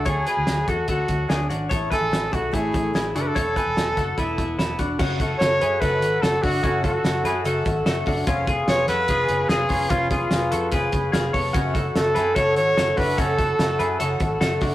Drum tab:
CC |--------|--------|--------|x-------|
HH |xxxxxxxx|xxxxxxxx|xxxxxxxx|-xxxxxxo|
SD |--o---o-|--o---o-|--oo--o-|--o---o-|
BD |o--ooo--|oo-ooo--|oo-ooo-o|oo--o--o|

CC |--------|--------|--------|--------|
HH |xxxxxxxo|xxxxxxxo|xxxxxxxo|xxxxxxxo|
SD |--oo--o-|--oo--o-|--o---o-|--oo--o-|
BD |oo---o-o|oo--o--o|oo--oo-o|oo--o--o|

CC |--------|
HH |xxxxxxxo|
SD |--o---o-|
BD |oo---o-o|